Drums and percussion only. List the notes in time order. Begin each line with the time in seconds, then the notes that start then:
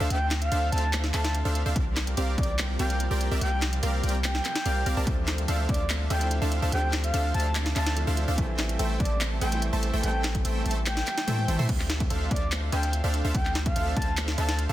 0.10 closed hi-hat
0.31 clap, snare, closed hi-hat
0.42 closed hi-hat
0.52 closed hi-hat
0.72 closed hi-hat
0.78 closed hi-hat
0.93 clap, closed hi-hat
1.04 snare
1.14 clap, closed hi-hat
1.25 snare, closed hi-hat
1.35 closed hi-hat
1.55 closed hi-hat
1.76 kick, closed hi-hat
1.97 clap, snare, closed hi-hat
2.07 closed hi-hat
2.17 closed hi-hat
2.38 kick, closed hi-hat
2.43 closed hi-hat
2.59 clap, closed hi-hat
2.79 closed hi-hat
2.90 closed hi-hat
3.00 closed hi-hat
3.21 closed hi-hat
3.41 closed hi-hat
3.62 clap, snare, closed hi-hat
3.73 closed hi-hat
3.83 closed hi-hat
4.03 closed hi-hat
4.09 closed hi-hat
4.24 clap, closed hi-hat
4.35 snare
4.45 clap, closed hi-hat
4.56 snare, closed hi-hat
4.66 closed hi-hat
4.86 closed hi-hat
5.07 kick, closed hi-hat
5.28 clap, snare, closed hi-hat
5.38 closed hi-hat
5.48 closed hi-hat
5.69 kick, closed hi-hat
5.74 closed hi-hat
5.90 clap, closed hi-hat
6.10 closed hi-hat
6.21 closed hi-hat
6.31 closed hi-hat
6.52 closed hi-hat
6.72 closed hi-hat
6.93 clap, snare, closed hi-hat
7.04 closed hi-hat
7.14 closed hi-hat
7.34 closed hi-hat
7.40 closed hi-hat
7.55 clap, closed hi-hat
7.66 snare
7.76 clap, closed hi-hat
7.87 snare, closed hi-hat
7.97 closed hi-hat
8.17 closed hi-hat
8.38 kick, closed hi-hat
8.59 clap, snare, closed hi-hat
8.69 closed hi-hat
8.79 closed hi-hat
9.00 kick, closed hi-hat
9.05 closed hi-hat
9.21 clap, closed hi-hat
9.41 closed hi-hat
9.52 closed hi-hat
9.62 closed hi-hat
9.83 closed hi-hat
10.03 closed hi-hat
10.24 clap, snare, closed hi-hat
10.35 kick, closed hi-hat
10.45 closed hi-hat
10.66 closed hi-hat
10.71 closed hi-hat
10.86 clap, closed hi-hat
10.97 snare
11.07 clap, closed hi-hat
11.18 snare, closed hi-hat
11.28 closed hi-hat, high tom
11.38 high tom
11.48 closed hi-hat, mid tom
11.59 mid tom
11.69 kick, closed hi-hat, ride, crash
11.80 clap
11.90 snare, closed hi-hat
12.00 kick, closed hi-hat
12.10 closed hi-hat
12.31 kick, closed hi-hat
12.36 closed hi-hat
12.52 clap, closed hi-hat
12.72 closed hi-hat
12.83 closed hi-hat
12.93 closed hi-hat
13.14 closed hi-hat
13.35 kick, closed hi-hat, ride
13.45 clap
13.55 snare, closed hi-hat
13.66 kick, closed hi-hat
13.76 closed hi-hat
13.97 kick, closed hi-hat
14.02 closed hi-hat
14.17 clap, closed hi-hat
14.28 snare
14.38 closed hi-hat
14.49 snare, closed hi-hat
14.59 closed hi-hat